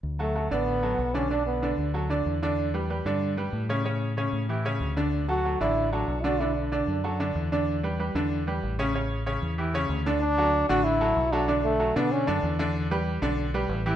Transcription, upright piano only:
\new Staff \with { instrumentName = "Upright piano" } { \time 4/4 \key d \major \tempo 4 = 188 r8 <fis fis' a'>8 <fis fis' a'>8 <d d' d''>4 <fis fis' a'>4 <d d' d''>8 | <d d' d''>4 <d d' d''>4 <fis fis' a'>8 <d d' d''>4 <d d' d''>8~ | <d d' d''>8 <g g' b'>8 <g g' b'>8 <d d' d''>4 <g g' b'>4 <cis cis' cis''>8 | <cis cis' cis''>4 <cis cis' cis''>4 <e e' g'>8 <cis cis' cis''>4 <d d' d''>8~ |
<d d' d''>8 <fis fis' a'>8 <fis fis' a'>8 <d d' d''>4 <fis fis' a'>4 <d d' d''>8 | <d d' d''>4 <d d' d''>4 <fis fis' a'>8 <d d' d''>4 <d d' d''>8~ | <d d' d''>8 <g g' b'>8 <g g' b'>8 <d d' d''>4 <g g' b'>4 <cis cis' cis''>8 | <cis cis' cis''>4 <cis cis' cis''>4 <e e' g'>8 <cis cis' cis''>4 <d d' d''>8 |
r8 <fis fis' a'>4 <d d' d''>4 <fis fis' a'>4 <fis fis' a'>8 | <d d' d''>4 <fis fis' a'>8 <d d' d''>4 <d d' d''>4 <d d' d''>8~ | <d d' d''>8 <g g' b'>4 <d d' d''>4 <g g' b'>4 <e e' g'>8 | }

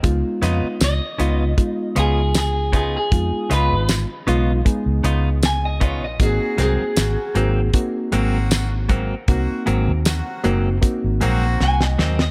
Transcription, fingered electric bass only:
\new Staff \with { instrumentName = "Fingered electric bass" } { \clef bass \time 4/4 \key aes \mixolydian \tempo 4 = 78 des,16 r16 f,16 r16 des,16 r16 des,8 r8 des,4. | f,16 r16 des,16 aes,,8 r16 ces,8 r16 des,16 des,4~ des,16 bes,,16 | aes,,16 r16 c,16 r16 aes,,16 r16 aes,,8 r8 aes,,4. | c,16 r16 aes,,16 ees,8 r16 ges,,8 r16 aes,,16 bes,,8 c,8 ees,8 | }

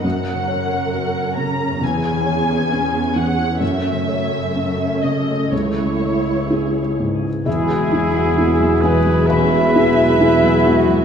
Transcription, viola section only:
\new Staff \with { instrumentName = "Viola section" } { \time 4/4 \key e \major \tempo 4 = 66 << { ais'2 gis'2 | a2. gis'4 | gis2 cis'8 b8 b4 | } \\ { cis'1~ | cis'2 e'2 | e8 fis8 gis8 gis2~ gis8 | } >> }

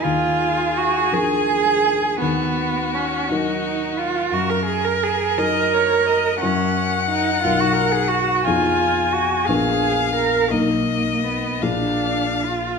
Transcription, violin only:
\new Staff \with { instrumentName = "Violin" } { \time 6/8 \key ees \minor \tempo 4. = 57 aes'2. | ges'2. | bes'4. ees''8 des''8 ees''8 | ges''2. |
aes''4. f''4. | dis''4. f''4. | }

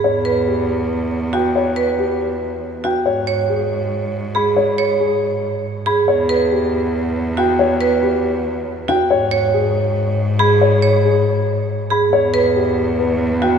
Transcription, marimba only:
\new Staff \with { instrumentName = "Marimba" } { \time 7/8 \key e \lydian \tempo 4 = 139 r8 b'8 r2 fis'8 | r8 b'8 r2 fis'8 | r8 cis''8 r2 gis'8 | r8 cis''8 r2 gis'8 |
r8 b'8 r2 fis'8 | r8 b'8 r2 fis'8 | r8 cis''8 r2 gis'8 | r8 cis''8 r2 gis'8 |
r8 b'8 r2 fis'8 | }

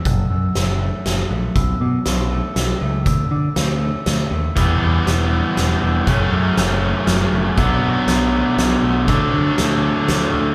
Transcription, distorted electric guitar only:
\new Staff \with { instrumentName = "Distorted electric guitar" } { \clef bass \time 3/4 \key b \minor \tempo 4 = 120 r2. | r2. | r2. | <e g b e'>2. |
<fis, cis fis a cis'>2. | <b, fis b d'>2. | <d fis a d'>2. | }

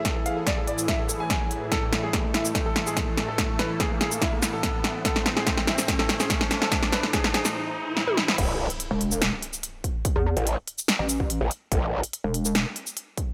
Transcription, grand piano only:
\new Staff \with { instrumentName = "Grand piano" } { \time 4/4 \key a \minor \tempo 4 = 144 a'16 a'16 f''16 a'16 d''16 a'16 d''16 a'16 e''16 a'16 a'16 gis''4 r16 | a'16 a16 a16 gis'16 a16 a16 e'16 a16 a16 a'16 a16 gis'16 a16 a16 a16 a'16 | a16 a16 b'16 a16 gis'16 a16 gis'16 a16 e'16 a16 a16 a'4 r16 | a'16 a16 a16 gis'16 a16 a16 e'16 a16 a16 a'16 a16 gis'16 a16 a16 a16 a'16 |
a16 a16 b'16 a16 gis'16 a16 gis'16 a16 r2 | r1 | r1 | r1 | }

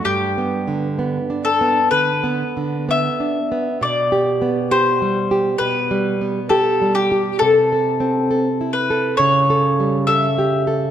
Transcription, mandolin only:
\new Staff \with { instrumentName = "Mandolin" } { \time 4/4 \key g \major \tempo 4 = 67 g'4. a'8 b'4 e''4 | d''4 c''4 b'4 a'8 g'8 | a'4. b'8 cis''4 e''4 | }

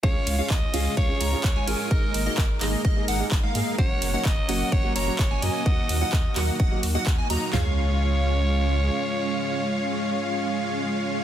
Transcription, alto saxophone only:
\new Staff \with { instrumentName = "Alto saxophone" } { \time 4/4 \key des \major \tempo 4 = 128 des''4 ees''4 des''4. bes'8~ | bes'4. r2 r8 | des''4 ees''4 des''8 des''4 ees''8~ | ees''2~ ees''8 r4. |
des''1~ | des''1 | }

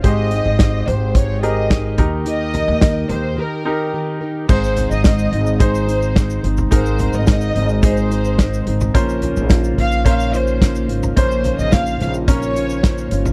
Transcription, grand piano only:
\new Staff \with { instrumentName = "Grand piano" } { \time 4/4 \key aes \major \tempo 4 = 108 <aes, g' aes' c''>4. r4 <g' aes' bes'>4 <ees ees' g' bes'>8~ | <ees ees' g' bes'>4 r4. <ees' g' bes'>4 r8 | <aes, ees' aes' c''>4. r8 <ees' aes' c''>4. r8 | <aes, ees' aes' bes'>4. r8 <ees' aes' ees''>4. r8 |
<bes, des' bes' c''>4. r8 <des' bes' c''>4. r8 | <bes, des' bes' c''>4. r8 <des' bes' des''>4. r8 | }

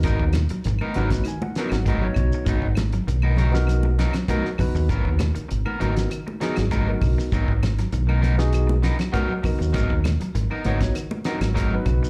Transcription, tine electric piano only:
\new Staff \with { instrumentName = "Tine electric piano" } { \time 4/4 \key gis \minor \tempo 4 = 99 << { r4. ais''8 gis''16 fis''16 fis''8 dis''16 cis''16 cis''8 | r1 | r1 | r1 |
r1 | } \\ { <b dis' fis' ais'>8 r4 <b dis' fis' b'>8 r8 <b dis' fis' ais'>16 r8 <b dis' fis'>8.~ | <b dis' fis'>16 r4. <b dis' fis' ais'>8 r8. <b dis' fis' ais'>16 r16 <b dis' fis' b'>8~ | <b dis' fis' b'>8 r4 <b dis' fis' ais'>8 r8 <b dis' fis' gis'>16 r8 <b dis' fis' ais'>8.~ | <b dis' fis' ais'>16 r4. <b dis' fis' gis'>8 r8. <b dis' fis' ais'>16 r16 <b dis' fis' ais'>8~ |
<b dis' fis' ais'>8 r4 <b dis' fis' cis''>8 r8 <b dis' fis' ais'>16 r8 <b dis' fis' b'>8. | } >> }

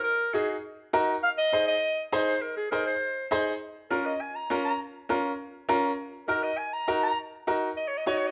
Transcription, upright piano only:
\new Staff \with { instrumentName = "Upright piano" } { \time 4/4 \key bes \minor \tempo 4 = 202 r4 <ees' ges' aes'>8 r4. <ees' ges' bes'>8 r8 | r4 <ees' aes' c''>8 r4. <ees' aes' c''>8 r8 | r4 <ees' aes' c''>8 r4. <ees' aes' c''>8 r8 | r4 <des' f' bes'>8 r4. <des' f' bes'>8 r8 |
r4 <des' f' bes'>8 r4. <des' f' bes'>8 r8 | r4 <ees' ges' bes'>8 r4. <ees' ges' bes'>8 r8 | r4 <ees' ges' bes'>8 r4. <ees' ges' des''>8 r8 | }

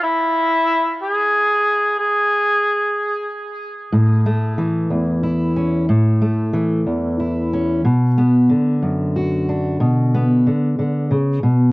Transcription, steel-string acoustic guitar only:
\new Staff \with { instrumentName = "Steel-string acoustic guitar" } { \clef bass \time 6/8 \key a \major \tempo 4. = 61 << { r2. | r2. | r8 a4. e'8 cis'8 | r8 a4. e'8 cis'8 |
r8 b4. fis'8 d'8 | r8 b2~ b8 | } \\ { r2. | r2. | a,4 e8 e,4. | a,4 e8 e,4. |
b,4 d8 fis,4. | b,4 d8 d8 cis8 b,8 | } >> }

